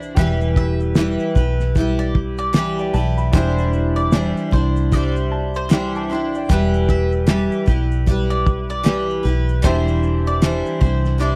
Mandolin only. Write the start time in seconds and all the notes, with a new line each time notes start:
0.57 E5
1.99 D5
2.39 D5
3.34 C5
3.96 D5
4.53 C5
4.93 D5
5.56 C5
6.90 E5
8.30 D5
8.70 D5
9.64 C5
10.27 D5
10.81 C5
11.21 D5